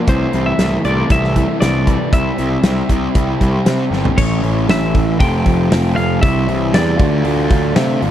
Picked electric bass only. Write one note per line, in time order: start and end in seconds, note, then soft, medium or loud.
0.08 0.25 C2 medium
0.34 0.51 C2 medium
0.59 0.76 C2 medium
0.85 1.02 C2 medium
1.10 1.45 C2 medium
1.62 1.96 C2 medium
2.13 2.30 C2 medium
2.39 2.56 C2 medium
2.64 2.81 C2 medium
2.90 3.07 C2 medium
3.16 3.33 C2 medium
3.41 3.58 C2 medium
3.67 3.84 C3 medium
3.91 4.08 G1 medium
4.18 4.41 A1 medium
4.43 4.66 A1 medium
4.69 4.92 A1 medium
4.94 5.18 A1 medium
5.21 5.44 F1 medium
5.46 5.69 F1 medium
5.72 5.95 F1 medium
5.98 6.21 F1 medium
6.23 6.46 C2 medium
6.49 6.72 C2 medium
6.75 6.98 E2 medium
7.00 7.23 D2 medium
7.26 7.73 D2 medium
7.76 8.00 C3 medium
8.02 8.11 G#1 medium